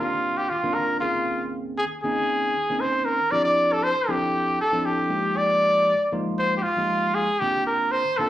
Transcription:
Already playing: tine electric piano D#3 A#3 C4, trumpet F4
0.00 tine electric piano D4 G4
0.37 trumpet G4
0.49 trumpet F4
0.63 tine electric piano D#3 A#3 C4 D4 F4
0.74 trumpet A#4
1.00 tine electric piano D#3 A#3 C4 C#4 G#4, trumpet F4
1.78 trumpet G#4
2.03 tine electric piano D#3 A#3 C4 C#4 D#4, trumpet G#4
2.69 tine electric piano D#3 A#3 C4 C#4 D#4
2.81 trumpet C5
3.05 trumpet A#4
3.31 tine electric piano F3 C4 D4 E4 G4, trumpet D5
3.45 trumpet D5
3.73 trumpet A4
3.83 trumpet C5
4.08 tine electric piano F3 C4 D4 E4 A4, trumpet G4
4.61 trumpet A4
4.72 tine electric piano F3 C4 D4 E4 A4
4.86 trumpet G4
5.09 tine electric piano F3 G#3 A#3 D#4 G4
5.37 trumpet D5
6.12 tine electric piano F3 G#3 A#3 D#4 F4
6.39 trumpet C5
6.57 trumpet G4
6.63 trumpet F4
6.77 tine electric piano F3 G#3 A#3 D#4 G4
7.15 trumpet G#4
7.40 tine electric piano D#3 A#3 C4 D4 F4, trumpet G4
7.67 trumpet A#4
7.92 trumpet C5
8.17 tine electric piano D#3 A#3 C4 D4 F4, trumpet A4

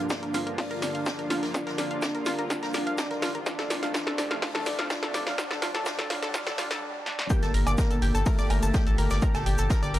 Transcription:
Already playing: synth drone G2, analog synth pad D3 F3 A#3 F4, analog synth lead D4, riser
0.09 synth pluck D5, kick, snare, closed hi-hat, shaker
0.23 synth pluck A#4, closed hi-hat
0.34 synth pluck F4, snare, open hi-hat, shaker
0.47 synth pluck A#4, closed hi-hat
0.58 analog synth lead D4, synth pluck F4, kick, snare, closed hi-hat, open hi-hat
0.71 synth pluck A#4, closed hi-hat
0.82 synth pluck D5, snare, open hi-hat, shaker
0.95 synth pluck F5, closed hi-hat
1.06 synth pluck D5, kick, snare, closed hi-hat, shaker
1.19 synth pluck A#4, closed hi-hat
1.30 synth pluck F4, snare, open hi-hat, shaker
1.43 synth pluck A#4, snare, open hi-hat
1.54 analog synth lead D4, synth pluck F4, kick, snare, closed hi-hat, shaker
1.67 synth pluck A#4, snare, closed hi-hat
1.78 synth pluck D5, snare, open hi-hat, shaker
1.91 synth pluck F5, closed hi-hat
2.02 synth pluck D5, kick, snare, closed hi-hat, shaker
2.15 synth pluck A#4, closed hi-hat
2.26 synth pluck F4, snare, open hi-hat, shaker
2.39 synth pluck A#4, closed hi-hat
2.50 analog synth lead D4, synth pluck F4, kick, snare, closed hi-hat, shaker
2.63 synth pluck A#4, snare, closed hi-hat
2.73 synth pluck D5, snare, open hi-hat, shaker
2.87 synth pluck F5, closed hi-hat
2.98 synth pluck D5, kick, snare, closed hi-hat, shaker
3.11 synth pluck A#4, snare, closed hi-hat
3.22 synth pluck F4, snare, open hi-hat, shaker
3.35 synth pluck A#4, closed hi-hat
3.46 analog synth pad C3 A3, analog synth lead D4, synth pluck F4, kick, snare, closed hi-hat, shaker
3.58 synth pluck A4, snare, closed hi-hat
3.70 synth pluck D5, snare, open hi-hat, shaker
3.83 synth pluck F5, snare, closed hi-hat
3.94 analog synth lead D4, synth pluck F4, kick, snare, closed hi-hat, shaker
4.07 synth pluck A4, snare, closed hi-hat
4.18 synth pluck D5, snare, open hi-hat, shaker
4.31 synth pluck F5, snare, closed hi-hat
4.42 analog synth lead D4, synth pluck F4, kick, snare, closed hi-hat, open hi-hat
4.55 synth pluck A4, snare, closed hi-hat
4.66 synth pluck D5, snare, open hi-hat, shaker
4.79 synth pluck F5, snare, closed hi-hat
4.90 analog synth lead D4, synth pluck F4, kick, snare, closed hi-hat, shaker
5.03 synth pluck A4, snare, closed hi-hat
5.14 synth pluck D5, snare, open hi-hat, shaker
5.27 synth pluck F5, snare, open hi-hat
5.38 analog synth lead D4, synth pluck F4, kick, snare, closed hi-hat, shaker
5.51 synth pluck A4, snare, closed hi-hat
5.62 analog synth lead D4, synth pluck F4, snare, open hi-hat, shaker
5.74 synth pluck A4, snare, closed hi-hat
5.86 analog synth lead D4, synth pluck F4, kick, snare, closed hi-hat, shaker
5.98 synth pluck A4, snare, closed hi-hat
6.10 analog synth lead D4, synth pluck F4, snare, open hi-hat
6.22 synth pluck A4, snare, closed hi-hat
6.34 analog synth lead D4, synth pluck F4, kick, snare, closed hi-hat, shaker
6.46 synth pluck A4, snare, closed hi-hat
6.58 analog synth lead D4, synth pluck F4, snare, open hi-hat, shaker
6.70 synth pluck A4, snare, closed hi-hat
6.82 analog synth lead D4
7.06 analog synth lead D4, snare
7.19 snare
7.30 analog synth pad A#2 D3 G4 A4, analog synth lead A#3, synth pluck G4 G5, kick, closed hi-hat, cabasa, shaker
7.42 analog synth bass G1, synth pluck A4 A5, snare, closed hi-hat, cabasa
7.54 analog synth bass G1, synth pluck A#4 A#5, open hi-hat, shaker
7.67 analog synth bass G1, synth pluck D5 D6, closed hi-hat, cabasa, low woodblock
7.78 synth pluck A#4 A#5, kick, snare, closed hi-hat, cabasa, shaker
7.91 analog synth bass G1, synth pluck A4 A5, closed hi-hat, cabasa
8.02 analog synth bass G1, synth pluck G4 G5, open hi-hat, shaker
8.15 analog synth bass G1, synth pluck A4 A5, closed hi-hat, cabasa
8.26 analog synth lead A3, synth pluck A#4 A#5, kick, closed hi-hat, open hi-hat, cabasa
8.38 analog synth bass G1, synth pluck D5 D6, closed hi-hat, cabasa
8.50 analog synth bass G1, synth pluck A#4 A#5, open hi-hat, low woodblock, shaker
8.63 analog synth bass G1, synth pluck A4 A5, closed hi-hat, cabasa
8.74 synth pluck G4 G5, kick, snare, closed hi-hat, cabasa, shaker
8.87 analog synth bass A1, synth pluck A4 A5, closed hi-hat, cabasa
8.98 analog synth bass G1, synth pluck A#4 A#5, open hi-hat, shaker
9.10 analog synth bass G1, synth pluck D5 D6, snare, open hi-hat, cabasa
9.22 synth pluck A#4 A#5, kick, closed hi-hat, cabasa, shaker
9.34 analog synth bass G1, synth pluck A4 A5, snare, closed hi-hat, cabasa, low woodblock
9.46 analog synth bass G1, synth pluck G4 G5, open hi-hat, shaker
9.58 analog synth bass G1, synth pluck A4 A5, closed hi-hat, cabasa
9.70 synth pluck A#4 A#5, kick, snare, closed hi-hat, cabasa, shaker
9.83 analog synth bass G1, synth pluck D5 D6, closed hi-hat, cabasa
9.94 analog synth bass G1, synth pluck A#4 A#5, open hi-hat, shaker

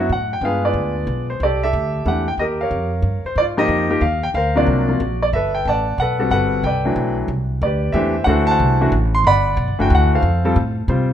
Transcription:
0.09 upright bass A2, grand piano F#5
0.33 grand piano G5
0.41 upright bass G2, grand piano G#3 B3 D4 F4 F5
0.45 grand piano G#4 B4
0.65 grand piano F4 B4 D5
0.73 upright bass D2
1.07 upright bass B1
1.30 grand piano C5
1.40 upright bass C2, grand piano A4 D5
1.44 grand piano G4
1.63 grand piano G4 A4 E5
1.73 upright bass D2
2.06 upright bass E2, grand piano E3 A3 D4 G4 F#5
2.28 grand piano G5
2.38 upright bass D#2, grand piano G4 A#4 D#5
2.61 grand piano A#4 C#5 F5
2.71 upright bass F2
3.02 upright bass G2
3.24 grand piano C5, muted upright bass stroke
3.36 upright bass G#2, grand piano D5
3.40 grand piano F4
3.57 grand piano F3 A#3 D#4 G4 C5 D#5
3.68 upright bass F2
3.90 grand piano F3 A#3 D#4 G4
4.01 upright bass D#2, grand piano F5
4.23 grand piano G5
4.34 upright bass D2, grand piano A#4 C5 F5
4.55 grand piano C3 F#3 A#3 D4 F4 F#4 D5
4.66 upright bass C2
4.88 grand piano C3 F3 A#3 F4
5.00 upright bass A#1
5.22 grand piano D5
5.33 upright bass G1, grand piano A4 B4 E5
5.55 grand piano G5
5.65 upright bass A1, grand piano D5 A5
5.69 grand piano F#5
5.98 upright bass B1, grand piano A4 B4 F#5
6.19 grand piano G3 C4 F#4 A4
6.31 upright bass G1, grand piano A4 B4 F#5
6.63 upright bass C2, grand piano B4 D5 G5
6.85 grand piano E3 F#3 A3 D4
6.96 upright bass B1
7.28 upright bass C2
7.62 upright bass D2, grand piano G4 B4 D5
7.92 upright bass E2, grand piano E3 A3 D4 G4 E5
7.97 grand piano C5
8.24 upright bass D2, grand piano E3 A3 D4 F#4 F#5
8.29 grand piano A4 C5
8.47 grand piano A5
8.51 grand piano C5 F#5
8.59 upright bass C2
8.81 grand piano E3 A3 D4 F#4
8.92 upright bass A1
9.15 grand piano C6
9.24 upright bass G1, grand piano D5 F#5 B5
9.57 upright bass B1
9.68 upright bass G1
9.79 upright bass F#1, grand piano E3 A3 D4 F#4 G5
9.90 upright bass D2
9.95 grand piano F#5
10.15 grand piano A4 C5 F5
10.22 upright bass F2
10.45 grand piano G3 C4 F4 A4
10.56 upright bass A2
10.88 upright bass C3, grand piano G3 C4 F4 C5

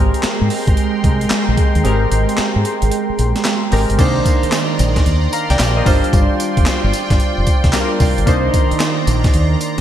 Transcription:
Already playing: fingered electric bass G#1, synth keys G#3 C4 G4 A#4, analog synth pad G#3 G5 A#5 C6
0.14 closed hi-hat
0.23 muted fingered electric bass stroke, snare, clap, closed hi-hat
0.41 fingered electric bass G#2
0.50 open hi-hat
0.67 fingered electric bass G#1, kick, closed hi-hat
0.77 closed hi-hat
1.04 fingered electric bass C2, kick, closed hi-hat
1.21 closed hi-hat
1.30 muted fingered electric bass stroke, snare, clap, closed hi-hat
1.49 fingered electric bass A#1
1.57 kick, closed hi-hat
1.75 fingered electric bass D#2, closed hi-hat
1.84 fingered electric bass G#1, synth keys G#3 C4 G4 A#4, closed hi-hat
2.12 fingered electric bass G#1, closed hi-hat
2.29 closed hi-hat
2.37 muted fingered electric bass stroke, snare, clap, closed hi-hat
2.56 fingered electric bass G#2
2.65 closed hi-hat
2.82 fingered electric bass G#1, closed hi-hat
2.91 closed hi-hat
3.10 muted fingered electric bass stroke
3.19 fingered electric bass A#1, closed hi-hat
3.36 snare, closed hi-hat
3.45 snare, clap, closed hi-hat
3.72 fingered electric bass G#1, synth keys G#3 C4 G4 A#4, open hi-hat
3.90 fingered electric bass G1, closed hi-hat
3.98 fingered electric bass C2, analog synth pad D#3 D5 A#5 C6, synth keys A#3 D4 D#4 C5, kick, closed hi-hat, crash, tambourine
4.26 kick, closed hi-hat, tambourine
4.43 muted fingered electric bass stroke, closed hi-hat
4.52 snare, clap, closed hi-hat, tambourine
4.79 fingered electric bass A#1, closed hi-hat, tambourine
4.96 kick, snare, closed hi-hat
5.06 fingered electric bass D#2, closed hi-hat
5.33 synth keys F5 A#5, closed hi-hat, tambourine
5.50 fingered electric bass C2, synth keys D5 G5, snare, closed hi-hat
5.59 fingered electric bass A#1, snare, clap, closed hi-hat, tambourine
5.77 synth keys A#4 D#5
5.85 fingered electric bass G1, synth keys G3 D4 F4 C5, analog synth pad F4 G5, kick, open hi-hat, tambourine
6.04 closed hi-hat
6.13 fingered electric bass G1, kick, closed hi-hat, tambourine
6.40 closed hi-hat, tambourine
6.57 fingered electric bass F1, kick, closed hi-hat
6.66 snare, clap, closed hi-hat, tambourine
6.84 fingered electric bass G1
6.93 closed hi-hat, tambourine
7.10 fingered electric bass G1, kick, snare, closed hi-hat
7.20 closed hi-hat
7.38 fingered electric bass F1
7.47 kick, closed hi-hat, tambourine
7.64 fingered electric bass C2, kick, snare, closed hi-hat
7.73 synth keys G3 D4 F4 A#4, snare, clap, closed hi-hat, tambourine
8.00 fingered electric bass C2, kick, open hi-hat, tambourine
8.18 fingered electric bass G1, closed hi-hat
8.26 fingered electric bass C2, analog synth pad D#3 A#5, synth keys A#3 D4 D#4 C5, kick, closed hi-hat, tambourine
8.54 kick, closed hi-hat, tambourine
8.71 muted fingered electric bass stroke, closed hi-hat
8.80 snare, clap, closed hi-hat, tambourine
9.07 fingered electric bass A#1, closed hi-hat, tambourine
9.24 kick, snare, closed hi-hat
9.34 fingered electric bass D#2, closed hi-hat
9.61 closed hi-hat, tambourine

